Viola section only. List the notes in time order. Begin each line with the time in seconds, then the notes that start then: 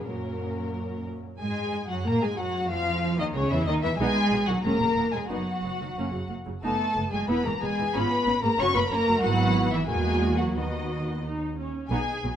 0.06 F#3 A#3
1.40 G#3
1.89 F#3
2.06 A#3
2.23 G#3
2.39 F#3
2.71 F3
3.19 D#3
3.36 C#3
3.53 E3
3.68 D#3
3.84 E3
4.00 B3 D#4
4.32 F#3 B3
4.49 D#3 F#3
4.64 G#3 C#4
4.80 C#3 G#3
4.97 E3 B3
5.14 C#3 G#3
5.29 B3 D#4
5.64 F#3 B3
5.80 D#3 F#3
5.97 A#3 C#4
6.12 C#3 F#3
6.29 F#3 A#3
6.46 C#3 F#3
6.63 B3 D#4
6.96 A3 B3
7.12 F#3 A3
7.28 B3 E4
7.45 E3 G#3
7.61 G#3 B3
7.78 E3 G#3
7.94 C#4 F4
8.27 B3 C#4
8.44 G#3 B3
8.60 C#4 F#4
8.75 F#3 A#3
8.91 A#3 C#4
9.07 F#3 A#3
9.24 B3 E4
9.89 A#3 F#4
10.57 B3 F#4
11.23 D#4
11.58 C#4
11.91 B3 D#4
12.24 F#3 B3